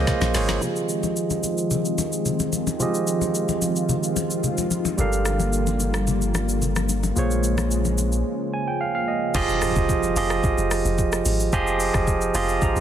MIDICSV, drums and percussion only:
0, 0, Header, 1, 2, 480
1, 0, Start_track
1, 0, Key_signature, -4, "minor"
1, 0, Tempo, 545455
1, 545, Time_signature, 4, 2, 24, 8
1, 11267, End_track
2, 0, Start_track
2, 0, Title_t, "Drums"
2, 64, Note_on_c, 9, 38, 91
2, 64, Note_on_c, 9, 64, 73
2, 65, Note_on_c, 9, 82, 71
2, 66, Note_on_c, 9, 36, 99
2, 152, Note_off_c, 9, 38, 0
2, 152, Note_off_c, 9, 64, 0
2, 153, Note_off_c, 9, 82, 0
2, 154, Note_off_c, 9, 36, 0
2, 188, Note_on_c, 9, 82, 61
2, 189, Note_on_c, 9, 38, 84
2, 191, Note_on_c, 9, 63, 75
2, 276, Note_off_c, 9, 82, 0
2, 277, Note_off_c, 9, 38, 0
2, 279, Note_off_c, 9, 63, 0
2, 304, Note_on_c, 9, 38, 109
2, 304, Note_on_c, 9, 46, 61
2, 304, Note_on_c, 9, 63, 64
2, 304, Note_on_c, 9, 82, 111
2, 392, Note_off_c, 9, 38, 0
2, 392, Note_off_c, 9, 46, 0
2, 392, Note_off_c, 9, 63, 0
2, 392, Note_off_c, 9, 82, 0
2, 429, Note_on_c, 9, 38, 102
2, 429, Note_on_c, 9, 63, 83
2, 429, Note_on_c, 9, 82, 56
2, 517, Note_off_c, 9, 38, 0
2, 517, Note_off_c, 9, 63, 0
2, 517, Note_off_c, 9, 82, 0
2, 543, Note_on_c, 9, 64, 60
2, 544, Note_on_c, 9, 82, 68
2, 631, Note_off_c, 9, 64, 0
2, 632, Note_off_c, 9, 82, 0
2, 669, Note_on_c, 9, 82, 46
2, 757, Note_off_c, 9, 82, 0
2, 784, Note_on_c, 9, 82, 82
2, 872, Note_off_c, 9, 82, 0
2, 908, Note_on_c, 9, 63, 71
2, 909, Note_on_c, 9, 82, 49
2, 996, Note_off_c, 9, 63, 0
2, 997, Note_off_c, 9, 82, 0
2, 1025, Note_on_c, 9, 82, 67
2, 1113, Note_off_c, 9, 82, 0
2, 1146, Note_on_c, 9, 82, 47
2, 1149, Note_on_c, 9, 63, 67
2, 1234, Note_off_c, 9, 82, 0
2, 1237, Note_off_c, 9, 63, 0
2, 1263, Note_on_c, 9, 82, 87
2, 1264, Note_on_c, 9, 63, 52
2, 1351, Note_off_c, 9, 82, 0
2, 1352, Note_off_c, 9, 63, 0
2, 1387, Note_on_c, 9, 82, 47
2, 1475, Note_off_c, 9, 82, 0
2, 1503, Note_on_c, 9, 64, 82
2, 1503, Note_on_c, 9, 82, 63
2, 1591, Note_off_c, 9, 64, 0
2, 1591, Note_off_c, 9, 82, 0
2, 1630, Note_on_c, 9, 82, 49
2, 1718, Note_off_c, 9, 82, 0
2, 1744, Note_on_c, 9, 63, 75
2, 1746, Note_on_c, 9, 82, 82
2, 1832, Note_off_c, 9, 63, 0
2, 1834, Note_off_c, 9, 82, 0
2, 1870, Note_on_c, 9, 82, 64
2, 1958, Note_off_c, 9, 82, 0
2, 1985, Note_on_c, 9, 64, 64
2, 1985, Note_on_c, 9, 82, 64
2, 2073, Note_off_c, 9, 64, 0
2, 2073, Note_off_c, 9, 82, 0
2, 2109, Note_on_c, 9, 82, 56
2, 2111, Note_on_c, 9, 63, 64
2, 2197, Note_off_c, 9, 82, 0
2, 2199, Note_off_c, 9, 63, 0
2, 2224, Note_on_c, 9, 63, 59
2, 2226, Note_on_c, 9, 82, 93
2, 2312, Note_off_c, 9, 63, 0
2, 2314, Note_off_c, 9, 82, 0
2, 2349, Note_on_c, 9, 63, 74
2, 2351, Note_on_c, 9, 82, 50
2, 2437, Note_off_c, 9, 63, 0
2, 2439, Note_off_c, 9, 82, 0
2, 2463, Note_on_c, 9, 64, 60
2, 2465, Note_on_c, 9, 82, 67
2, 2551, Note_off_c, 9, 64, 0
2, 2553, Note_off_c, 9, 82, 0
2, 2591, Note_on_c, 9, 82, 45
2, 2679, Note_off_c, 9, 82, 0
2, 2705, Note_on_c, 9, 82, 83
2, 2793, Note_off_c, 9, 82, 0
2, 2828, Note_on_c, 9, 63, 72
2, 2830, Note_on_c, 9, 82, 49
2, 2916, Note_off_c, 9, 63, 0
2, 2918, Note_off_c, 9, 82, 0
2, 2946, Note_on_c, 9, 82, 67
2, 3034, Note_off_c, 9, 82, 0
2, 3068, Note_on_c, 9, 82, 47
2, 3069, Note_on_c, 9, 63, 67
2, 3156, Note_off_c, 9, 82, 0
2, 3157, Note_off_c, 9, 63, 0
2, 3184, Note_on_c, 9, 63, 51
2, 3185, Note_on_c, 9, 82, 88
2, 3272, Note_off_c, 9, 63, 0
2, 3273, Note_off_c, 9, 82, 0
2, 3309, Note_on_c, 9, 82, 49
2, 3397, Note_off_c, 9, 82, 0
2, 3423, Note_on_c, 9, 64, 80
2, 3425, Note_on_c, 9, 82, 65
2, 3511, Note_off_c, 9, 64, 0
2, 3513, Note_off_c, 9, 82, 0
2, 3550, Note_on_c, 9, 82, 50
2, 3638, Note_off_c, 9, 82, 0
2, 3664, Note_on_c, 9, 63, 75
2, 3666, Note_on_c, 9, 82, 87
2, 3752, Note_off_c, 9, 63, 0
2, 3754, Note_off_c, 9, 82, 0
2, 3790, Note_on_c, 9, 82, 62
2, 3878, Note_off_c, 9, 82, 0
2, 3904, Note_on_c, 9, 64, 69
2, 3904, Note_on_c, 9, 82, 62
2, 3992, Note_off_c, 9, 64, 0
2, 3992, Note_off_c, 9, 82, 0
2, 4028, Note_on_c, 9, 82, 58
2, 4030, Note_on_c, 9, 63, 67
2, 4116, Note_off_c, 9, 82, 0
2, 4118, Note_off_c, 9, 63, 0
2, 4144, Note_on_c, 9, 63, 59
2, 4145, Note_on_c, 9, 82, 99
2, 4232, Note_off_c, 9, 63, 0
2, 4233, Note_off_c, 9, 82, 0
2, 4269, Note_on_c, 9, 63, 77
2, 4271, Note_on_c, 9, 82, 51
2, 4357, Note_off_c, 9, 63, 0
2, 4359, Note_off_c, 9, 82, 0
2, 4383, Note_on_c, 9, 64, 61
2, 4386, Note_on_c, 9, 82, 69
2, 4471, Note_off_c, 9, 64, 0
2, 4474, Note_off_c, 9, 82, 0
2, 4511, Note_on_c, 9, 82, 45
2, 4599, Note_off_c, 9, 82, 0
2, 4624, Note_on_c, 9, 37, 86
2, 4624, Note_on_c, 9, 82, 82
2, 4712, Note_off_c, 9, 37, 0
2, 4712, Note_off_c, 9, 82, 0
2, 4749, Note_on_c, 9, 63, 72
2, 4750, Note_on_c, 9, 82, 53
2, 4837, Note_off_c, 9, 63, 0
2, 4838, Note_off_c, 9, 82, 0
2, 4866, Note_on_c, 9, 82, 68
2, 4954, Note_off_c, 9, 82, 0
2, 4987, Note_on_c, 9, 82, 47
2, 4989, Note_on_c, 9, 63, 70
2, 5075, Note_off_c, 9, 82, 0
2, 5077, Note_off_c, 9, 63, 0
2, 5104, Note_on_c, 9, 63, 52
2, 5104, Note_on_c, 9, 82, 87
2, 5192, Note_off_c, 9, 63, 0
2, 5192, Note_off_c, 9, 82, 0
2, 5227, Note_on_c, 9, 37, 100
2, 5228, Note_on_c, 9, 82, 50
2, 5315, Note_off_c, 9, 37, 0
2, 5316, Note_off_c, 9, 82, 0
2, 5343, Note_on_c, 9, 64, 82
2, 5344, Note_on_c, 9, 82, 67
2, 5431, Note_off_c, 9, 64, 0
2, 5432, Note_off_c, 9, 82, 0
2, 5470, Note_on_c, 9, 82, 49
2, 5558, Note_off_c, 9, 82, 0
2, 5584, Note_on_c, 9, 63, 76
2, 5586, Note_on_c, 9, 82, 85
2, 5587, Note_on_c, 9, 37, 89
2, 5672, Note_off_c, 9, 63, 0
2, 5674, Note_off_c, 9, 82, 0
2, 5675, Note_off_c, 9, 37, 0
2, 5710, Note_on_c, 9, 82, 64
2, 5798, Note_off_c, 9, 82, 0
2, 5824, Note_on_c, 9, 64, 71
2, 5825, Note_on_c, 9, 82, 64
2, 5912, Note_off_c, 9, 64, 0
2, 5913, Note_off_c, 9, 82, 0
2, 5948, Note_on_c, 9, 82, 56
2, 5951, Note_on_c, 9, 63, 69
2, 5952, Note_on_c, 9, 37, 91
2, 6036, Note_off_c, 9, 82, 0
2, 6039, Note_off_c, 9, 63, 0
2, 6040, Note_off_c, 9, 37, 0
2, 6064, Note_on_c, 9, 63, 57
2, 6065, Note_on_c, 9, 82, 102
2, 6152, Note_off_c, 9, 63, 0
2, 6153, Note_off_c, 9, 82, 0
2, 6189, Note_on_c, 9, 63, 75
2, 6191, Note_on_c, 9, 82, 51
2, 6277, Note_off_c, 9, 63, 0
2, 6279, Note_off_c, 9, 82, 0
2, 6303, Note_on_c, 9, 64, 59
2, 6305, Note_on_c, 9, 82, 69
2, 6391, Note_off_c, 9, 64, 0
2, 6393, Note_off_c, 9, 82, 0
2, 6431, Note_on_c, 9, 82, 46
2, 6519, Note_off_c, 9, 82, 0
2, 6544, Note_on_c, 9, 82, 82
2, 6632, Note_off_c, 9, 82, 0
2, 6668, Note_on_c, 9, 63, 71
2, 6669, Note_on_c, 9, 37, 78
2, 6670, Note_on_c, 9, 82, 52
2, 6756, Note_off_c, 9, 63, 0
2, 6757, Note_off_c, 9, 37, 0
2, 6758, Note_off_c, 9, 82, 0
2, 6786, Note_on_c, 9, 82, 69
2, 6874, Note_off_c, 9, 82, 0
2, 6907, Note_on_c, 9, 82, 47
2, 6908, Note_on_c, 9, 63, 69
2, 6995, Note_off_c, 9, 82, 0
2, 6996, Note_off_c, 9, 63, 0
2, 7023, Note_on_c, 9, 63, 51
2, 7024, Note_on_c, 9, 82, 86
2, 7111, Note_off_c, 9, 63, 0
2, 7112, Note_off_c, 9, 82, 0
2, 7148, Note_on_c, 9, 82, 49
2, 7236, Note_off_c, 9, 82, 0
2, 8224, Note_on_c, 9, 49, 109
2, 8224, Note_on_c, 9, 82, 74
2, 8225, Note_on_c, 9, 36, 123
2, 8312, Note_off_c, 9, 49, 0
2, 8312, Note_off_c, 9, 82, 0
2, 8313, Note_off_c, 9, 36, 0
2, 8350, Note_on_c, 9, 82, 50
2, 8438, Note_off_c, 9, 82, 0
2, 8463, Note_on_c, 9, 37, 99
2, 8464, Note_on_c, 9, 46, 55
2, 8464, Note_on_c, 9, 82, 92
2, 8551, Note_off_c, 9, 37, 0
2, 8552, Note_off_c, 9, 46, 0
2, 8552, Note_off_c, 9, 82, 0
2, 8589, Note_on_c, 9, 82, 55
2, 8592, Note_on_c, 9, 36, 93
2, 8677, Note_off_c, 9, 82, 0
2, 8680, Note_off_c, 9, 36, 0
2, 8705, Note_on_c, 9, 36, 93
2, 8706, Note_on_c, 9, 82, 75
2, 8793, Note_off_c, 9, 36, 0
2, 8794, Note_off_c, 9, 82, 0
2, 8827, Note_on_c, 9, 82, 51
2, 8915, Note_off_c, 9, 82, 0
2, 8944, Note_on_c, 9, 46, 57
2, 8944, Note_on_c, 9, 82, 96
2, 9032, Note_off_c, 9, 46, 0
2, 9032, Note_off_c, 9, 82, 0
2, 9066, Note_on_c, 9, 37, 113
2, 9068, Note_on_c, 9, 82, 53
2, 9154, Note_off_c, 9, 37, 0
2, 9156, Note_off_c, 9, 82, 0
2, 9184, Note_on_c, 9, 82, 69
2, 9185, Note_on_c, 9, 36, 119
2, 9272, Note_off_c, 9, 82, 0
2, 9273, Note_off_c, 9, 36, 0
2, 9310, Note_on_c, 9, 82, 57
2, 9398, Note_off_c, 9, 82, 0
2, 9426, Note_on_c, 9, 46, 54
2, 9426, Note_on_c, 9, 82, 92
2, 9427, Note_on_c, 9, 37, 100
2, 9514, Note_off_c, 9, 46, 0
2, 9514, Note_off_c, 9, 82, 0
2, 9515, Note_off_c, 9, 37, 0
2, 9551, Note_on_c, 9, 82, 68
2, 9639, Note_off_c, 9, 82, 0
2, 9665, Note_on_c, 9, 82, 70
2, 9667, Note_on_c, 9, 36, 98
2, 9753, Note_off_c, 9, 82, 0
2, 9755, Note_off_c, 9, 36, 0
2, 9789, Note_on_c, 9, 82, 60
2, 9792, Note_on_c, 9, 37, 95
2, 9877, Note_off_c, 9, 82, 0
2, 9880, Note_off_c, 9, 37, 0
2, 9905, Note_on_c, 9, 46, 61
2, 9905, Note_on_c, 9, 82, 107
2, 9993, Note_off_c, 9, 46, 0
2, 9993, Note_off_c, 9, 82, 0
2, 10031, Note_on_c, 9, 82, 56
2, 10119, Note_off_c, 9, 82, 0
2, 10145, Note_on_c, 9, 36, 125
2, 10145, Note_on_c, 9, 82, 73
2, 10233, Note_off_c, 9, 36, 0
2, 10233, Note_off_c, 9, 82, 0
2, 10271, Note_on_c, 9, 82, 52
2, 10359, Note_off_c, 9, 82, 0
2, 10384, Note_on_c, 9, 46, 54
2, 10384, Note_on_c, 9, 82, 93
2, 10472, Note_off_c, 9, 46, 0
2, 10472, Note_off_c, 9, 82, 0
2, 10509, Note_on_c, 9, 37, 89
2, 10509, Note_on_c, 9, 82, 57
2, 10512, Note_on_c, 9, 36, 94
2, 10597, Note_off_c, 9, 37, 0
2, 10597, Note_off_c, 9, 82, 0
2, 10600, Note_off_c, 9, 36, 0
2, 10625, Note_on_c, 9, 36, 91
2, 10626, Note_on_c, 9, 82, 78
2, 10713, Note_off_c, 9, 36, 0
2, 10714, Note_off_c, 9, 82, 0
2, 10748, Note_on_c, 9, 82, 52
2, 10836, Note_off_c, 9, 82, 0
2, 10865, Note_on_c, 9, 46, 56
2, 10865, Note_on_c, 9, 82, 96
2, 10953, Note_off_c, 9, 46, 0
2, 10953, Note_off_c, 9, 82, 0
2, 10989, Note_on_c, 9, 82, 54
2, 11077, Note_off_c, 9, 82, 0
2, 11104, Note_on_c, 9, 82, 71
2, 11105, Note_on_c, 9, 36, 125
2, 11192, Note_off_c, 9, 82, 0
2, 11193, Note_off_c, 9, 36, 0
2, 11231, Note_on_c, 9, 82, 55
2, 11267, Note_off_c, 9, 82, 0
2, 11267, End_track
0, 0, End_of_file